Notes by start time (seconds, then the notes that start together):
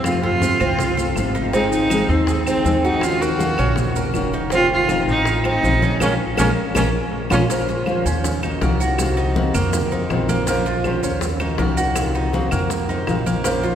Already playing: F2
0.04 C3 F3 A3 C4 F4, high bongo, high conga, claves, maracas
0.22 F4 A4, high bongo, high conga
0.41 C3 F3 A3 C4 F4, high bongo, high conga, maracas
0.59 C2 A3 C4 F4, high bongo, high conga, low conga, claves, maracas
0.78 muted nylon-string guitar stroke, high bongo, high conga, low conga, maracas
0.97 A3 C4 F4 A4, high bongo, high conga, maracas
1.16 G#1 C3 F3 A3 C4 F4, high bongo, low bongo, high conga, claves, maracas
1.35 D#4, maracas
1.53 D#3 G#3 C4 D#4 G#4, high bongo, high conga, maracas
1.71 D#4, high bongo, high conga, maracas
1.90 D#3 G#3 C4 D#4 G#4, high bongo, high conga, claves, maracas
2.09 D#2 C4 D#4 G#4, high bongo, high conga, maracas
2.27 G#4, muted nylon-string guitar stroke, high bongo, high conga, maracas
2.46 C4 D#4 G#4, high bongo, high conga, claves, maracas
2.65 D#2 D#3 G#3 C4 D#4 G#4, high bongo, low bongo, high conga, maracas
2.84 D#4 F#4, maracas
3.01 D#3 A#3 C#4 F4 F#4, high bongo, high conga, claves, maracas
3.20 F#4 A#4, high bongo, high conga, maracas
3.39 D#3 A#3 C#4 F#4, high bongo, high conga, maracas
3.57 A#1 A#3 C#4 F#4, high bongo, high conga, low conga, claves, maracas
3.76 muted nylon-string guitar stroke, high bongo, high conga, low conga, maracas
3.95 A#3 C#4 F#4 A#4, high bongo, high conga, maracas
4.14 F1 D#3 A#3 C#4 F#4, high bongo, low bongo, high conga, claves, maracas
4.34 D#4, maracas
4.50 C3 D#3 A3 C4 F4, high bongo, high conga, maracas
4.70 F4, high bongo, high conga
4.88 C3 D#3 A3 C4 D#4 F4, high bongo, high conga, claves, maracas
5.07 A1 A3 C4 D#4 F4, high bongo, high conga, maracas
5.25 F4, muted nylon-string guitar stroke, high bongo, high conga, maracas
5.44 A3 C4 D#4 F4, high bongo, high conga, claves
5.63 A#1 C3 D#3 A3 C4 F4, high bongo, low bongo, high conga, maracas
5.82 C#4, high conga, maracas
6.00 A#1 G#3 A#3 C#4 F4, high bongo, high conga, claves, maracas
6.37 A#1 G#3 A#3 C#4 F4, high bongo, high conga, claves, maracas
6.75 A#1 G#3 A#3 C#4 F4, high bongo, high conga, claves, maracas
7.30 A#1 G#3 A#3 C#4 F4, high bongo, high conga, claves, maracas
7.49 F3 A#3 C#4 F4 C5, high bongo, high conga, maracas
7.68 F4, high bongo, high conga, maracas
7.86 F3 A#3 C#4 F4 C5, high bongo, high conga, claves, maracas
8.06 D#2 C#4 F4 C5, high conga, maracas
8.24 muted nylon-string guitar stroke, high bongo, high conga, maracas
8.43 A#3 C#4 D#4 F#4, high bongo, high conga, claves, maracas
8.61 C2 D#3 A#3 C#4 F#4 A#4, high bongo, low bongo, high conga, maracas
8.80 F#4, high bongo, high conga, maracas
8.98 C3 D#3 A#3 C4 F#4, high bongo, high conga, claves, maracas
9.17 D#4, high bongo, high conga, maracas
9.36 C3 D#3 A#3 C4 F#4, high bongo, high conga, maracas
9.54 F2 A#3 C4 F#4, high bongo, low conga, claves, maracas
9.73 muted nylon-string guitar stroke, high bongo, high conga, low conga, maracas
9.91 A#3 C4 D#4 F4, high conga, maracas
10.10 A#1 D#3 A#3 C4 F4, high bongo, low bongo, high conga, claves, maracas
10.29 A#3, high bongo, high conga, maracas
10.47 F3 A#3 C#4 F4 C5, high bongo, high conga, maracas
10.66 F4, high bongo, maracas
10.84 F3 A#3 C#4 F4 C5, high bongo, high conga, claves, maracas
11.03 D#2 C#4 F4 C5, high conga, maracas
11.21 muted nylon-string guitar stroke, high bongo, high conga, maracas
11.40 A#3 C#4 D#4 F#4, high bongo, high conga, claves, maracas
11.58 C2 D#3 A#3 C#4 F#4 A#4, high bongo, low bongo, high conga, maracas
11.77 F#4, high bongo, high conga, maracas
11.95 C3 D#3 A#3 C4 F#4, high bongo, high conga, claves, maracas
12.14 D#4, high bongo, high conga, maracas
12.33 C3 D#3 A#3 C4 F#4, high bongo, high conga, maracas
12.51 F2 A#3 C4 F#4, high bongo, low conga, claves, maracas
12.70 muted nylon-string guitar stroke, high bongo, high conga, maracas
12.88 A#3 C4 D#4 F4, high conga, maracas
13.07 A#1 D#3 A#3 C4 F4, high bongo, low bongo, high conga, claves, maracas
13.26 A#3, high bongo, high conga, maracas
13.44 F3 A#3 C#4 F4 C5, high bongo, high conga, maracas
13.63 F4, high bongo, high conga, maracas